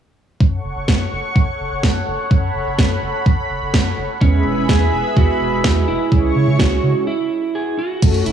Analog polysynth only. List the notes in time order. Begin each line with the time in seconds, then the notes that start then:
4.21 G#3 B3 E4 G#4
5.88 G#3 B3 E4 G#4
6.12 G#3 C#4 E4 G#4
8.02 A3 C#4 F#4 A4